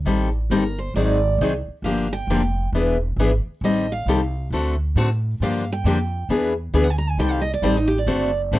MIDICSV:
0, 0, Header, 1, 5, 480
1, 0, Start_track
1, 0, Key_signature, -2, "minor"
1, 0, Tempo, 445765
1, 65, Time_signature, 4, 2, 24, 8
1, 9250, End_track
2, 0, Start_track
2, 0, Title_t, "Steel-string acoustic guitar"
2, 0, Program_c, 0, 25
2, 550, Note_on_c, 0, 70, 82
2, 846, Note_on_c, 0, 72, 78
2, 847, Note_off_c, 0, 70, 0
2, 1014, Note_off_c, 0, 72, 0
2, 1029, Note_on_c, 0, 74, 74
2, 1472, Note_off_c, 0, 74, 0
2, 1984, Note_on_c, 0, 77, 77
2, 2284, Note_off_c, 0, 77, 0
2, 2291, Note_on_c, 0, 79, 103
2, 2898, Note_off_c, 0, 79, 0
2, 3927, Note_on_c, 0, 75, 83
2, 4216, Note_off_c, 0, 75, 0
2, 4220, Note_on_c, 0, 77, 91
2, 4823, Note_off_c, 0, 77, 0
2, 5849, Note_on_c, 0, 77, 89
2, 6136, Note_off_c, 0, 77, 0
2, 6165, Note_on_c, 0, 79, 98
2, 6755, Note_off_c, 0, 79, 0
2, 7361, Note_on_c, 0, 78, 84
2, 7432, Note_off_c, 0, 78, 0
2, 7432, Note_on_c, 0, 80, 96
2, 7515, Note_off_c, 0, 80, 0
2, 7519, Note_on_c, 0, 82, 102
2, 7640, Note_off_c, 0, 82, 0
2, 7640, Note_on_c, 0, 80, 83
2, 7731, Note_off_c, 0, 80, 0
2, 7750, Note_on_c, 0, 79, 100
2, 7873, Note_off_c, 0, 79, 0
2, 7873, Note_on_c, 0, 77, 80
2, 7979, Note_off_c, 0, 77, 0
2, 7983, Note_on_c, 0, 75, 95
2, 8099, Note_off_c, 0, 75, 0
2, 8114, Note_on_c, 0, 74, 83
2, 8207, Note_off_c, 0, 74, 0
2, 8232, Note_on_c, 0, 72, 92
2, 8364, Note_on_c, 0, 63, 60
2, 8378, Note_off_c, 0, 72, 0
2, 8481, Note_on_c, 0, 67, 95
2, 8521, Note_off_c, 0, 63, 0
2, 8588, Note_off_c, 0, 67, 0
2, 8595, Note_on_c, 0, 74, 75
2, 9052, Note_off_c, 0, 74, 0
2, 9250, End_track
3, 0, Start_track
3, 0, Title_t, "Steel-string acoustic guitar"
3, 0, Program_c, 1, 25
3, 60, Note_on_c, 1, 51, 72
3, 69, Note_on_c, 1, 55, 71
3, 71, Note_on_c, 1, 60, 66
3, 71, Note_on_c, 1, 67, 78
3, 78, Note_on_c, 1, 69, 68
3, 299, Note_off_c, 1, 51, 0
3, 304, Note_off_c, 1, 55, 0
3, 305, Note_off_c, 1, 60, 0
3, 305, Note_off_c, 1, 67, 0
3, 309, Note_off_c, 1, 69, 0
3, 548, Note_on_c, 1, 51, 76
3, 550, Note_on_c, 1, 55, 80
3, 553, Note_on_c, 1, 60, 82
3, 558, Note_on_c, 1, 67, 78
3, 558, Note_on_c, 1, 69, 86
3, 671, Note_off_c, 1, 51, 0
3, 673, Note_off_c, 1, 55, 0
3, 674, Note_off_c, 1, 60, 0
3, 677, Note_off_c, 1, 67, 0
3, 677, Note_off_c, 1, 69, 0
3, 1037, Note_on_c, 1, 51, 62
3, 1037, Note_on_c, 1, 54, 67
3, 1043, Note_on_c, 1, 60, 61
3, 1043, Note_on_c, 1, 68, 69
3, 1045, Note_on_c, 1, 63, 78
3, 1267, Note_off_c, 1, 51, 0
3, 1267, Note_off_c, 1, 54, 0
3, 1270, Note_off_c, 1, 60, 0
3, 1270, Note_off_c, 1, 68, 0
3, 1272, Note_off_c, 1, 63, 0
3, 1519, Note_on_c, 1, 51, 78
3, 1521, Note_on_c, 1, 54, 75
3, 1521, Note_on_c, 1, 60, 81
3, 1525, Note_on_c, 1, 63, 84
3, 1527, Note_on_c, 1, 68, 86
3, 1637, Note_off_c, 1, 51, 0
3, 1637, Note_off_c, 1, 60, 0
3, 1638, Note_off_c, 1, 54, 0
3, 1639, Note_off_c, 1, 63, 0
3, 1641, Note_off_c, 1, 68, 0
3, 1992, Note_on_c, 1, 50, 65
3, 1993, Note_on_c, 1, 53, 67
3, 1998, Note_on_c, 1, 58, 69
3, 1998, Note_on_c, 1, 62, 66
3, 2007, Note_on_c, 1, 67, 64
3, 2225, Note_off_c, 1, 50, 0
3, 2225, Note_off_c, 1, 53, 0
3, 2227, Note_off_c, 1, 58, 0
3, 2228, Note_off_c, 1, 62, 0
3, 2232, Note_off_c, 1, 67, 0
3, 2478, Note_on_c, 1, 58, 86
3, 2479, Note_on_c, 1, 50, 89
3, 2481, Note_on_c, 1, 62, 81
3, 2483, Note_on_c, 1, 53, 84
3, 2487, Note_on_c, 1, 67, 90
3, 2596, Note_off_c, 1, 50, 0
3, 2596, Note_off_c, 1, 58, 0
3, 2597, Note_off_c, 1, 62, 0
3, 2598, Note_off_c, 1, 53, 0
3, 2600, Note_off_c, 1, 67, 0
3, 2957, Note_on_c, 1, 52, 69
3, 2957, Note_on_c, 1, 59, 67
3, 2959, Note_on_c, 1, 62, 71
3, 2962, Note_on_c, 1, 68, 74
3, 3187, Note_off_c, 1, 52, 0
3, 3187, Note_off_c, 1, 59, 0
3, 3188, Note_off_c, 1, 62, 0
3, 3189, Note_off_c, 1, 68, 0
3, 3439, Note_on_c, 1, 52, 90
3, 3444, Note_on_c, 1, 59, 86
3, 3446, Note_on_c, 1, 62, 91
3, 3450, Note_on_c, 1, 68, 90
3, 3556, Note_off_c, 1, 52, 0
3, 3559, Note_off_c, 1, 59, 0
3, 3560, Note_off_c, 1, 62, 0
3, 3562, Note_off_c, 1, 68, 0
3, 3916, Note_on_c, 1, 51, 63
3, 3919, Note_on_c, 1, 55, 69
3, 3924, Note_on_c, 1, 67, 68
3, 3927, Note_on_c, 1, 60, 64
3, 3931, Note_on_c, 1, 69, 73
3, 4146, Note_off_c, 1, 51, 0
3, 4148, Note_off_c, 1, 55, 0
3, 4150, Note_off_c, 1, 67, 0
3, 4152, Note_off_c, 1, 60, 0
3, 4154, Note_off_c, 1, 69, 0
3, 4394, Note_on_c, 1, 51, 78
3, 4397, Note_on_c, 1, 55, 79
3, 4398, Note_on_c, 1, 60, 79
3, 4407, Note_on_c, 1, 67, 86
3, 4411, Note_on_c, 1, 69, 91
3, 4514, Note_off_c, 1, 51, 0
3, 4515, Note_off_c, 1, 55, 0
3, 4516, Note_off_c, 1, 60, 0
3, 4520, Note_off_c, 1, 67, 0
3, 4522, Note_off_c, 1, 69, 0
3, 4872, Note_on_c, 1, 50, 69
3, 4878, Note_on_c, 1, 57, 70
3, 4883, Note_on_c, 1, 60, 76
3, 4885, Note_on_c, 1, 66, 75
3, 4888, Note_on_c, 1, 69, 75
3, 5104, Note_off_c, 1, 50, 0
3, 5107, Note_off_c, 1, 57, 0
3, 5109, Note_off_c, 1, 60, 0
3, 5111, Note_off_c, 1, 66, 0
3, 5112, Note_off_c, 1, 69, 0
3, 5349, Note_on_c, 1, 50, 84
3, 5351, Note_on_c, 1, 57, 83
3, 5356, Note_on_c, 1, 60, 92
3, 5359, Note_on_c, 1, 66, 97
3, 5363, Note_on_c, 1, 69, 99
3, 5471, Note_off_c, 1, 50, 0
3, 5472, Note_off_c, 1, 57, 0
3, 5474, Note_off_c, 1, 60, 0
3, 5476, Note_off_c, 1, 66, 0
3, 5478, Note_off_c, 1, 69, 0
3, 5833, Note_on_c, 1, 50, 65
3, 5837, Note_on_c, 1, 53, 66
3, 5841, Note_on_c, 1, 62, 76
3, 5845, Note_on_c, 1, 58, 74
3, 5845, Note_on_c, 1, 67, 74
3, 6065, Note_off_c, 1, 50, 0
3, 6066, Note_off_c, 1, 53, 0
3, 6069, Note_off_c, 1, 62, 0
3, 6070, Note_off_c, 1, 67, 0
3, 6071, Note_off_c, 1, 58, 0
3, 6305, Note_on_c, 1, 50, 82
3, 6311, Note_on_c, 1, 58, 93
3, 6312, Note_on_c, 1, 53, 83
3, 6316, Note_on_c, 1, 62, 95
3, 6320, Note_on_c, 1, 67, 85
3, 6429, Note_off_c, 1, 50, 0
3, 6432, Note_off_c, 1, 53, 0
3, 6432, Note_off_c, 1, 58, 0
3, 6435, Note_off_c, 1, 62, 0
3, 6437, Note_off_c, 1, 67, 0
3, 6780, Note_on_c, 1, 52, 69
3, 6785, Note_on_c, 1, 59, 70
3, 6786, Note_on_c, 1, 62, 77
3, 6795, Note_on_c, 1, 68, 78
3, 7018, Note_off_c, 1, 52, 0
3, 7021, Note_off_c, 1, 59, 0
3, 7021, Note_off_c, 1, 62, 0
3, 7025, Note_off_c, 1, 68, 0
3, 7254, Note_on_c, 1, 52, 90
3, 7260, Note_on_c, 1, 59, 91
3, 7260, Note_on_c, 1, 62, 85
3, 7267, Note_on_c, 1, 68, 96
3, 7383, Note_off_c, 1, 52, 0
3, 7386, Note_off_c, 1, 59, 0
3, 7386, Note_off_c, 1, 62, 0
3, 7390, Note_off_c, 1, 68, 0
3, 7737, Note_on_c, 1, 51, 68
3, 7743, Note_on_c, 1, 55, 76
3, 7747, Note_on_c, 1, 60, 71
3, 7750, Note_on_c, 1, 69, 67
3, 7753, Note_on_c, 1, 67, 74
3, 7977, Note_off_c, 1, 51, 0
3, 7980, Note_off_c, 1, 55, 0
3, 7981, Note_off_c, 1, 60, 0
3, 7983, Note_off_c, 1, 69, 0
3, 7984, Note_off_c, 1, 67, 0
3, 8208, Note_on_c, 1, 51, 79
3, 8216, Note_on_c, 1, 55, 92
3, 8221, Note_on_c, 1, 60, 90
3, 8224, Note_on_c, 1, 69, 89
3, 8227, Note_on_c, 1, 67, 93
3, 8341, Note_off_c, 1, 51, 0
3, 8344, Note_off_c, 1, 55, 0
3, 8347, Note_off_c, 1, 60, 0
3, 8349, Note_off_c, 1, 69, 0
3, 8350, Note_off_c, 1, 67, 0
3, 8688, Note_on_c, 1, 50, 69
3, 8692, Note_on_c, 1, 57, 74
3, 8694, Note_on_c, 1, 60, 80
3, 8696, Note_on_c, 1, 66, 79
3, 8697, Note_on_c, 1, 69, 78
3, 8933, Note_off_c, 1, 50, 0
3, 8935, Note_off_c, 1, 57, 0
3, 8936, Note_off_c, 1, 60, 0
3, 8936, Note_off_c, 1, 66, 0
3, 8937, Note_off_c, 1, 69, 0
3, 9181, Note_on_c, 1, 50, 89
3, 9183, Note_on_c, 1, 60, 83
3, 9184, Note_on_c, 1, 57, 78
3, 9187, Note_on_c, 1, 66, 89
3, 9194, Note_on_c, 1, 69, 92
3, 9250, Note_off_c, 1, 50, 0
3, 9250, Note_off_c, 1, 57, 0
3, 9250, Note_off_c, 1, 60, 0
3, 9250, Note_off_c, 1, 66, 0
3, 9250, Note_off_c, 1, 69, 0
3, 9250, End_track
4, 0, Start_track
4, 0, Title_t, "Upright bass"
4, 0, Program_c, 2, 32
4, 53, Note_on_c, 2, 33, 79
4, 524, Note_off_c, 2, 33, 0
4, 538, Note_on_c, 2, 31, 82
4, 1006, Note_off_c, 2, 31, 0
4, 1013, Note_on_c, 2, 32, 84
4, 1483, Note_off_c, 2, 32, 0
4, 1489, Note_on_c, 2, 36, 91
4, 1784, Note_off_c, 2, 36, 0
4, 1962, Note_on_c, 2, 31, 77
4, 2437, Note_off_c, 2, 31, 0
4, 2445, Note_on_c, 2, 29, 84
4, 2919, Note_off_c, 2, 29, 0
4, 2933, Note_on_c, 2, 28, 87
4, 3401, Note_off_c, 2, 28, 0
4, 3407, Note_on_c, 2, 32, 90
4, 3703, Note_off_c, 2, 32, 0
4, 3888, Note_on_c, 2, 33, 85
4, 4360, Note_off_c, 2, 33, 0
4, 4370, Note_on_c, 2, 36, 84
4, 4841, Note_off_c, 2, 36, 0
4, 4850, Note_on_c, 2, 38, 83
4, 5321, Note_off_c, 2, 38, 0
4, 5334, Note_on_c, 2, 45, 91
4, 5803, Note_off_c, 2, 45, 0
4, 5814, Note_on_c, 2, 43, 78
4, 6283, Note_off_c, 2, 43, 0
4, 6290, Note_on_c, 2, 41, 93
4, 6761, Note_off_c, 2, 41, 0
4, 6771, Note_on_c, 2, 40, 89
4, 7241, Note_off_c, 2, 40, 0
4, 7253, Note_on_c, 2, 38, 95
4, 7719, Note_off_c, 2, 38, 0
4, 7726, Note_on_c, 2, 36, 81
4, 8199, Note_off_c, 2, 36, 0
4, 8205, Note_on_c, 2, 33, 93
4, 8679, Note_off_c, 2, 33, 0
4, 8683, Note_on_c, 2, 30, 89
4, 9158, Note_off_c, 2, 30, 0
4, 9169, Note_on_c, 2, 33, 91
4, 9250, Note_off_c, 2, 33, 0
4, 9250, End_track
5, 0, Start_track
5, 0, Title_t, "Muted upright bass strokes"
5, 1801, Note_on_c, 9, 29, 37
5, 1908, Note_off_c, 9, 29, 0
5, 3724, Note_on_c, 9, 29, 36
5, 3832, Note_off_c, 9, 29, 0
5, 9250, End_track
0, 0, End_of_file